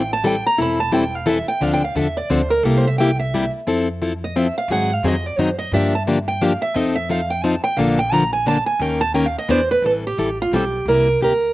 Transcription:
Already playing: upright bass A1, steel-string acoustic guitar G5
0.13 steel-string acoustic guitar A5
0.24 steel-string acoustic guitar E3 G3 C4 E4 A4 G5
0.46 steel-string acoustic guitar A#5
0.58 upright bass E1, steel-string acoustic guitar E3 G3 C4 E4 A4 B5
0.80 steel-string acoustic guitar A5
0.92 steel-string acoustic guitar E3 G3 C4 E4 A4 G5
1.15 steel-string acoustic guitar F5
1.26 steel-string acoustic guitar E3 G3 C4 E4 A4 E5
1.48 steel-string acoustic guitar G5
1.60 upright bass D2, steel-string acoustic guitar D3 F3 C4 D4 A4 F5
1.73 steel-string acoustic guitar G5
1.84 steel-string acoustic guitar F5
1.95 upright bass E2, steel-string acoustic guitar D3 F3 C4 D4 A4 E5
2.17 steel-string acoustic guitar D5
2.30 upright bass D2, steel-string acoustic guitar D3 F3 C4 D4 A4 C5
2.50 steel-string acoustic guitar A#4
2.63 upright bass C2, steel-string acoustic guitar C3 G3 A#3 E4 G4 A4
2.77 steel-string acoustic guitar C5
2.87 steel-string acoustic guitar E5
2.98 steel-string acoustic guitar C3 G3 A#3 E4 G4 G5
3.19 steel-string acoustic guitar E5
3.34 steel-string acoustic guitar C3 G3 A#3 E4 G4
3.67 upright bass F2, steel-string acoustic guitar F3 C4 E4 A4
4.02 steel-string acoustic guitar F3 C4 E4 A4
4.24 steel-string acoustic guitar D#5
4.36 steel-string acoustic guitar F3 C4 E4 A4 E5
4.58 steel-string acoustic guitar F5
4.68 upright bass G#2, steel-string acoustic guitar D#3 F#3 C4 D#4 G#4
4.72 steel-string acoustic guitar F#5
4.93 steel-string acoustic guitar F5
5.03 upright bass F2, steel-string acoustic guitar D#3 F#3 C4 D#4 G#4
5.07 steel-string acoustic guitar D#5
5.26 steel-string acoustic guitar D5
5.38 upright bass F#2, steel-string acoustic guitar D#3 F#3 C4 D#4 G#4 C5
5.58 steel-string acoustic guitar D#5
5.72 upright bass G2, steel-string acoustic guitar D3 F3 A#3 D4 G4 E5
5.95 steel-string acoustic guitar A5
6.07 steel-string acoustic guitar D3 F3 A#3 D4 G4
6.28 steel-string acoustic guitar G5
6.41 steel-string acoustic guitar D3 F3 A#3 D4 G4 F5
6.62 steel-string acoustic guitar E5
6.74 upright bass F2, steel-string acoustic guitar F3 C4 D#4 A4 D#5
6.95 steel-string acoustic guitar E5
7.09 steel-string acoustic guitar F3 C4 D#4 A4 F5
7.30 steel-string acoustic guitar G5
7.44 steel-string acoustic guitar F3 C4 D#4 A4 A5
7.64 steel-string acoustic guitar G5
7.77 upright bass A#1, steel-string acoustic guitar D3 F3 A#3 D4 A4 F5
7.99 steel-string acoustic guitar G5
8.12 steel-string acoustic guitar D3 F3 A#3 D4 A4 A#5
8.33 steel-string acoustic guitar G#5
8.46 steel-string acoustic guitar D3 F3 A#3 D4 A4 A5
8.66 steel-string acoustic guitar G#5
8.79 upright bass D#2, steel-string acoustic guitar D#3 A#3 C#4 G4 A#4 G5
9.01 steel-string acoustic guitar A5
9.14 steel-string acoustic guitar D#3 A#3 C#4 G4 A#4 G5
9.26 steel-string acoustic guitar F5
9.38 steel-string acoustic guitar D#5
9.48 upright bass E2, steel-string acoustic guitar E3 B3 D4 G#4 C5 D5
9.71 steel-string acoustic guitar B4
9.82 upright bass A1, steel-string acoustic guitar E3 G3 C4 E4 A4
10.07 steel-string acoustic guitar G4
10.17 upright bass A1, steel-string acoustic guitar E3 G3 C4 E4 A4
10.42 steel-string acoustic guitar F4
10.51 upright bass B1, steel-string acoustic guitar E3 G3 C4 E4 A4
10.56 steel-string acoustic guitar G4
10.86 upright bass C2, steel-string acoustic guitar C3 G3 A#3 E4 G4 A#4
11.21 upright bass D2, steel-string acoustic guitar C3 G3 A#3 E4 G4 A#4

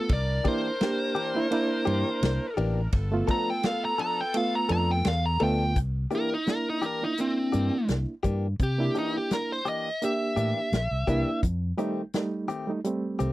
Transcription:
Already playing: reed electric piano A3 B3 F4, lead electric guitar A4
0.09 fingered electric bass C2, horn section D4 E4 A#4, lead electric guitar D5, kick, ride
0.44 clean electric guitar E3 A#3 D4 G4, reed electric piano A#3 D4 E4, lead electric guitar C5, kick, ride
0.81 reed electric piano A#3 D4 G4, snare, ride
1.15 clean electric guitar E3 A#3 D4 G4, ride
1.35 reed electric piano A#3 D4 E4
1.51 reed electric piano A#3 D4 E4, ride
1.85 fingered electric bass G2, clean electric guitar E3 A#3 D4 G4, ride
2.23 fingered electric bass C2, snare, ride
2.57 fingered electric bass A1, clean electric guitar E3 A#3 D4 G4, ride
2.93 fingered electric bass G1, horn section B3 F4 A4, kick, ride
3.12 reed electric piano A3 B3 F4
3.28 clean electric guitar F3 B3 D4 A4, lead electric guitar A#5, kick, ride
3.50 lead electric guitar G5
3.63 lead electric guitar F5, snare, ride
3.85 lead electric guitar A#5
3.98 clean electric guitar F3 B3 D4 A4, lead electric guitar A#5, ride
4.21 lead electric guitar G5
4.34 reed electric piano A3 B3 F4, lead electric guitar F5, ride
4.55 lead electric guitar A#5
4.69 fingered electric bass F2, clean electric guitar F3 B3 D4 A4, lead electric guitar A#5, ride
4.91 lead electric guitar G5
5.05 fingered electric bass E2, lead electric guitar F5, snare, ride
5.26 lead electric guitar A#5
5.40 fingered electric bass D2, clean electric guitar F3 B3 D4 A4, reed electric piano A3 B3 F4, lead electric guitar G5, ride
5.76 fingered electric bass C2, kick, closed hi-hat
6.11 clean electric guitar E3 A#3 D4 G4, reed electric piano A#3 D4 E4, closed hi-hat
6.15 lead electric guitar A#4
6.34 lead electric guitar D#4
6.47 reed electric piano A#3 D4 E4, lead electric guitar A#4, snare, closed hi-hat
6.69 lead electric guitar D#4
6.82 clean electric guitar E3 A#3 D4 G4, closed hi-hat
6.86 lead electric guitar A#4
7.02 reed electric piano A#3 D4 E4, lead electric guitar D#4
7.18 reed electric piano A#3 D4 E4, lead electric guitar C4, closed hi-hat
7.52 fingered electric bass G2, clean electric guitar E3 A#3 D4 G4, closed hi-hat
7.88 fingered electric bass C2, snare, closed hi-hat
8.23 fingered electric bass G2, clean electric guitar E3 A#3 D4 G4, kick, closed hi-hat
8.59 fingered electric bass C3, lead electric guitar G4, kick, closed hi-hat
8.78 reed electric piano A#3 D4 E4
8.95 clean electric guitar E3 A#3 D4 G4, lead electric guitar D#4, closed hi-hat
9.17 lead electric guitar G4
9.31 lead electric guitar A#4, snare, closed hi-hat
9.52 lead electric guitar C5
9.65 clean electric guitar E3 A#3 D4 G4, lead electric guitar D#5, closed hi-hat
10.02 reed electric piano A#3 D4 G4, lead electric guitar E5, closed hi-hat
10.36 fingered electric bass A2, clean electric guitar E3 A#3 D4 G4, closed hi-hat
10.72 fingered electric bass A#1, snare, closed hi-hat
10.91 fingered electric bass C2
11.07 fingered electric bass C2, clean electric guitar E3 A#3 D4 G4, reed electric piano A#3 D4 E4, kick, closed hi-hat
11.43 fingered electric bass F2, kick, closed hi-hat
11.77 clean electric guitar D#3 A3 C4 G4, reed electric piano G3 A3 D#4, closed hi-hat
12.14 reed electric piano G3 A3 D#4, snare, closed hi-hat
12.48 clean electric guitar D#3 A3 C4 G4, closed hi-hat
12.67 reed electric piano G3 A3 D#4
12.84 reed electric piano G3 A3 C4, closed hi-hat
13.19 fingered electric bass C2, clean electric guitar D#3 A3 C4 G4, closed hi-hat

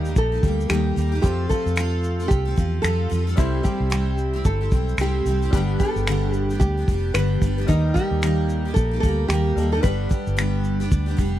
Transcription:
Already playing: fingered electric bass D#2, grand piano G3 A#3 D#4 G4
0.05 steel-string acoustic guitar A#3 D#4 G4, shaker
0.16 fingered electric bass A#1, nylon-string guitar A4, kick, shaker
0.32 steel-string acoustic guitar A#3 D#4 G4
0.43 fingered electric bass D2, steel-string acoustic guitar G3 A#3 D#4 G4, kick, shaker
0.61 shaker
0.70 fingered electric bass D#2, steel-string acoustic guitar D#3 G3 A#3 D#4 G4, nylon-string guitar G4, finger snap, shaker
0.96 fingered electric bass D#2, steel-string acoustic guitar G3 A#3 D#4 G4, shaker
1.12 steel-string acoustic guitar A#3 D#4 G4
1.21 fingered electric bass F2, steel-string acoustic guitar F3 C4 F4 A4, grand piano A3 C4 F4, nylon-string guitar G4, kick, shaker
1.25 grand piano C5
1.49 steel-string acoustic guitar F3 C4 F4 A4, nylon-string guitar A4, kick, shaker
1.66 fingered electric bass F2, shaker
1.76 steel-string acoustic guitar F3 C4 F4 A4, finger snap, shaker
2.04 shaker
2.20 steel-string acoustic guitar C4 F4 A4, shaker
2.28 fingered electric bass C2, nylon-string guitar G4, kick, shaker
2.45 steel-string acoustic guitar C4 F4 A4
2.56 fingered electric bass E2, steel-string acoustic guitar F3 C4 F4 A4, kick, shaker
2.82 fingered electric bass F2, steel-string acoustic guitar F3 C4 F4 A4, nylon-string guitar A4, finger snap, shaker
3.10 fingered electric bass F2, steel-string acoustic guitar F3 C4 F4 A4, shaker
3.27 steel-string acoustic guitar C4 F4 A4, shaker
3.36 fingered electric bass C2, steel-string acoustic guitar C3 G3 C4 E4 G4, grand piano G3 C4 E4 C5, nylon-string guitar E4, kick, shaker
3.63 steel-string acoustic guitar G3 C4 E4 G4, nylon-string guitar G4, kick, shaker
3.80 fingered electric bass C2
3.90 steel-string acoustic guitar C3 G3 C4 E4 G4, finger snap, shaker
4.18 shaker
4.33 steel-string acoustic guitar C4 E4 G4
4.45 fingered electric bass G1, nylon-string guitar A4, kick, shaker
4.61 steel-string acoustic guitar C4 E4 G4
4.71 fingered electric bass B1, steel-string acoustic guitar G3 C4 E4 G4, kick, shaker
4.89 shaker
4.98 fingered electric bass C2, steel-string acoustic guitar C3 G3 C4 E4 G4, nylon-string guitar G4, finger snap, shaker
5.25 fingered electric bass C2, steel-string acoustic guitar G3 C4 E4 G4, shaker
5.42 steel-string acoustic guitar C4 E4 G4, shaker
5.51 fingered electric bass G1, steel-string acoustic guitar G2 D3 G3, grand piano G3 B3 D4, nylon-string guitar G4, kick, shaker
5.55 steel-string acoustic guitar B3 D4 G4, grand piano B4
5.80 steel-string acoustic guitar G3 B3 D4 G4, nylon-string guitar A4, kick, shaker
5.96 fingered electric bass G1, shaker
6.07 steel-string acoustic guitar G2 D3 G3 B3 D4 G4, finger snap, shaker
6.33 nylon-string guitar G4, shaker
6.50 steel-string acoustic guitar G3 B3 D4 G4, shaker
6.60 fingered electric bass D2, nylon-string guitar G4, kick, shaker
6.77 steel-string acoustic guitar G3 B3 D4 G4
6.88 fingered electric bass F1, steel-string acoustic guitar G3 B3 D4 G4, kick, shaker
7.14 fingered electric bass G1, steel-string acoustic guitar G2 D3 G3 B3 D4 G4, nylon-string guitar B4, finger snap, shaker
7.42 fingered electric bass G1, steel-string acoustic guitar G3 B3 D4 G4, kick, shaker
7.58 steel-string acoustic guitar G3 B3 D4 G4
7.67 fingered electric bass D#2, steel-string acoustic guitar D#3 G3 A#3 D#4 G4, grand piano G3 A#3 D#4 A#4, nylon-string guitar D#4, kick, shaker
7.94 steel-string acoustic guitar G3 A#3 D#4 G4, nylon-string guitar G4, kick, shaker
8.11 fingered electric bass D#2
8.22 steel-string acoustic guitar D#3 G3 A#3 D#4 G4, finger snap, shaker
8.49 shaker
8.65 steel-string acoustic guitar A#3 D#4 G4
8.74 fingered electric bass A#1, nylon-string guitar A4, kick, shaker
8.91 steel-string acoustic guitar A#3 D#4 G4
9.00 fingered electric bass D2, steel-string acoustic guitar G3 A#3, nylon-string guitar A4, kick, shaker
9.05 steel-string acoustic guitar D#4 G4
9.28 fingered electric bass D#2, steel-string acoustic guitar D#3 G3 A#3 D#4 G4, nylon-string guitar G4, finger snap, shaker
9.56 fingered electric bass D#2, grand piano G3 A#3 D#4 A4, steel-string acoustic guitar G3 A#3 D#4, shaker
9.60 steel-string acoustic guitar G4
9.72 steel-string acoustic guitar A#3 D#4 G4, nylon-string guitar A4
9.81 fingered electric bass G1, steel-string acoustic guitar G2 D3 G3 B3 D4 G4, grand piano G3 B3 D4, nylon-string guitar B4, kick, shaker
9.85 grand piano B4
10.09 steel-string acoustic guitar G3 B3 D4 G4, kick, shaker
10.27 fingered electric bass G1, shaker
10.37 steel-string acoustic guitar G2 D3 G3 B3 D4 G4, finger snap, shaker
10.64 shaker
10.80 steel-string acoustic guitar G3 B3 D4 G4, shaker
10.92 fingered electric bass D2, kick, shaker
11.06 steel-string acoustic guitar G3 B3 D4 G4
11.17 fingered electric bass F1, steel-string acoustic guitar G3 B3 D4 G4, kick, shaker

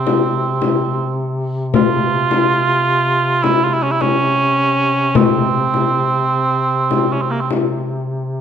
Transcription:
Already playing: duduk C3, cor anglais C4
0.07 frame drum
0.62 frame drum
1.74 cor anglais F4, frame drum
2.31 frame drum
3.43 cor anglais E4, frame drum
3.64 cor anglais F4
3.74 cor anglais E4
3.82 cor anglais C#4
3.91 cor anglais E4
4.01 cor anglais C#4, frame drum
5.15 cor anglais C4, frame drum
5.74 frame drum
6.91 frame drum
7.13 cor anglais C#4
7.22 cor anglais C4
7.31 cor anglais A#3
7.40 cor anglais C4
7.51 frame drum

